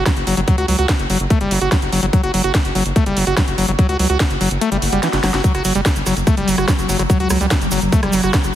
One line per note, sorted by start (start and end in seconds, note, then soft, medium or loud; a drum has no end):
0.06 0.12 F#3 medium
0.06 kick loud
0.06 snare loud
0.06 closed hi-hat medium
0.17 0.23 F#1 medium
0.17 closed hi-hat soft
0.27 0.34 F#1 loud
0.27 0.35 F#3 medium
0.27 open hi-hat loud
0.37 0.44 F#1 medium
0.37 0.41 F#3 medium
0.37 closed hi-hat medium
0.48 0.56 F#3 loud
0.48 kick loud
0.48 closed hi-hat medium
0.58 0.65 C#2 medium
0.58 0.66 F#4 medium
0.58 closed hi-hat medium
0.68 0.75 C#2 medium
0.68 0.77 F#3 medium
0.68 open hi-hat loud
0.79 0.85 C#2 medium
0.79 0.87 F#4 medium
0.79 closed hi-hat medium
0.89 kick loud
0.89 snare loud
0.89 closed hi-hat medium
0.99 1.06 F#1 medium
0.99 closed hi-hat medium
1.10 1.17 F#1 loud
1.10 1.18 F#3 medium
1.10 open hi-hat loud
1.20 1.27 F#1 medium
1.20 closed hi-hat medium
1.30 1.39 A3 loud
1.30 kick loud
1.30 closed hi-hat medium
1.41 1.48 F#1 medium
1.41 1.53 G3 medium
1.41 closed hi-hat medium
1.51 1.58 F#1 loud
1.51 1.59 F#3 medium
1.51 open hi-hat loud
1.61 1.68 F#1 medium
1.61 1.70 F#4 medium
1.61 closed hi-hat medium
1.72 1.77 F#3 medium
1.72 kick loud
1.72 snare loud
1.72 closed hi-hat medium
1.82 1.89 F#1 medium
1.82 closed hi-hat soft
1.92 1.99 F#1 loud
1.92 2.01 F#3 medium
1.92 open hi-hat loud
2.03 2.10 F#1 medium
2.03 2.06 F#3 medium
2.03 closed hi-hat medium
2.13 2.21 F#3 loud
2.13 kick loud
2.13 closed hi-hat medium
2.23 2.30 F#1 medium
2.23 2.32 F#4 medium
2.23 closed hi-hat medium
2.34 2.41 F#1 medium
2.34 2.42 F#3 medium
2.34 open hi-hat loud
2.44 2.51 F#1 medium
2.44 2.53 F#4 medium
2.44 closed hi-hat medium
2.55 kick loud
2.55 snare loud
2.55 closed hi-hat loud
2.65 2.72 F#1 medium
2.65 closed hi-hat medium
2.75 2.82 F#1 loud
2.75 2.84 F#3 medium
2.75 open hi-hat loud
2.86 2.92 F#1 medium
2.86 closed hi-hat medium
2.96 3.04 A3 loud
2.96 kick loud
2.96 closed hi-hat medium
3.06 3.13 F#1 medium
3.06 3.18 G3 medium
3.06 closed hi-hat medium
3.17 3.23 F#1 loud
3.17 3.25 F#3 medium
3.17 open hi-hat loud
3.27 3.34 F#1 medium
3.27 3.35 F#4 medium
3.27 closed hi-hat medium
3.37 3.43 F#3 medium
3.37 kick loud
3.37 snare loud
3.37 closed hi-hat medium
3.48 3.54 F#1 medium
3.48 closed hi-hat medium
3.58 3.65 F#1 loud
3.58 3.66 F#3 medium
3.58 open hi-hat loud
3.68 3.75 F#1 medium
3.68 3.72 F#3 medium
3.68 closed hi-hat medium
3.79 3.87 F#3 loud
3.79 kick loud
3.79 closed hi-hat medium
3.89 3.96 C#2 medium
3.89 3.97 F#4 medium
3.89 closed hi-hat medium
3.99 4.06 C#2 medium
3.99 4.08 F#3 medium
3.99 open hi-hat loud
4.10 4.17 C#2 loud
4.10 4.18 F#4 medium
4.10 closed hi-hat medium
4.20 kick loud
4.20 snare loud
4.20 closed hi-hat loud
4.30 4.37 F#1 medium
4.30 closed hi-hat medium
4.41 4.48 F#1 loud
4.41 4.49 F#3 medium
4.41 open hi-hat loud
4.51 4.58 F#1 medium
4.51 closed hi-hat medium
4.61 4.70 A3 loud
4.61 closed hi-hat medium
4.61 swell medium
4.72 4.79 F#1 medium
4.72 4.77 G3 medium
4.72 closed hi-hat medium
4.82 4.89 F#1 loud
4.82 open hi-hat loud
4.92 4.99 F#1 medium
4.92 5.01 G3 medium
4.92 closed hi-hat medium
5.03 5.08 E3 medium
5.03 snare medium
5.03 closed hi-hat medium
5.13 5.20 F#1 medium
5.13 snare medium
5.13 closed hi-hat medium
5.24 5.30 F#1 loud
5.24 5.32 F#3 loud
5.24 snare medium
5.24 open hi-hat loud
5.34 5.41 F#1 medium
5.34 5.42 F#4 medium
5.34 snare medium
5.34 closed hi-hat medium
5.44 8.55 F#3 medium
5.44 5.53 F#3 loud
5.44 kick loud
5.44 closed hi-hat loud
5.44 shaker medium
5.55 5.61 F#1 medium
5.55 5.63 F#4 medium
5.55 cross-stick soft
5.55 closed hi-hat medium
5.65 5.72 F#1 loud
5.65 5.73 F#3 medium
5.65 open hi-hat loud
5.65 shaker medium
5.75 5.82 F#1 medium
5.75 5.81 G3 loud
5.75 closed hi-hat medium
5.75 shaker soft
5.86 kick loud
5.86 cross-stick medium
5.86 snare loud
5.86 closed hi-hat loud
5.86 shaker medium
5.96 6.03 F#1 medium
5.96 closed hi-hat medium
5.96 shaker soft
6.06 6.13 F#1 loud
6.06 6.15 F#3 medium
6.06 cross-stick soft
6.06 open hi-hat loud
6.06 shaker medium
6.17 6.23 F#1 medium
6.17 closed hi-hat medium
6.17 shaker soft
6.27 6.35 A3 loud
6.27 kick loud
6.27 cross-stick soft
6.27 closed hi-hat medium
6.27 shaker medium
6.37 6.44 F#1 medium
6.37 6.49 G3 medium
6.37 closed hi-hat medium
6.48 6.54 F#1 loud
6.48 6.56 F#3 medium
6.48 open hi-hat loud
6.48 shaker medium
6.58 6.65 F#1 medium
6.58 6.66 F#4 medium
6.58 cross-stick medium
6.58 closed hi-hat medium
6.58 shaker soft
6.68 6.74 F#3 medium
6.68 kick loud
6.68 snare loud
6.68 closed hi-hat medium
6.68 shaker medium
6.79 6.86 F#1 medium
6.79 cross-stick soft
6.79 closed hi-hat medium
6.79 shaker soft
6.89 6.96 F#1 loud
6.89 6.97 F#3 medium
6.89 open hi-hat loud
6.89 shaker medium
6.99 7.06 F#1 medium
6.99 7.03 F#3 medium
6.99 cross-stick soft
6.99 closed hi-hat medium
6.99 shaker soft
7.10 7.18 F#3 loud
7.10 kick loud
7.10 closed hi-hat medium
7.10 shaker medium
7.20 7.27 C#2 medium
7.20 7.28 F#4 medium
7.20 closed hi-hat medium
7.30 7.37 C#2 medium
7.30 7.39 F#3 medium
7.30 cross-stick medium
7.30 open hi-hat loud
7.30 shaker loud
7.41 7.48 C#2 loud
7.41 7.46 G3 loud
7.41 closed hi-hat medium
7.41 shaker soft
7.51 kick loud
7.51 cross-stick soft
7.51 snare loud
7.51 closed hi-hat medium
7.51 shaker medium
7.61 7.68 F#1 medium
7.61 closed hi-hat medium
7.61 shaker soft
7.71 7.79 F#1 loud
7.71 7.80 F#3 medium
7.71 open hi-hat loud
7.71 shaker loud
7.82 7.89 F#1 medium
7.82 closed hi-hat medium
7.82 shaker soft
7.92 8.01 A3 loud
7.92 kick loud
7.92 closed hi-hat medium
7.92 shaker medium
8.03 8.10 F#1 medium
8.03 8.15 G3 medium
8.03 cross-stick medium
8.03 closed hi-hat medium
8.13 8.20 F#1 loud
8.13 8.21 F#3 medium
8.13 open hi-hat loud
8.13 shaker medium
8.23 8.30 F#1 medium
8.23 8.32 F#4 medium
8.23 cross-stick soft
8.23 closed hi-hat medium
8.23 shaker soft
8.33 8.39 F#3 medium
8.33 kick loud
8.33 snare loud
8.33 closed hi-hat medium
8.33 shaker medium
8.44 8.51 F#1 medium
8.44 cross-stick soft
8.44 closed hi-hat medium
8.44 shaker soft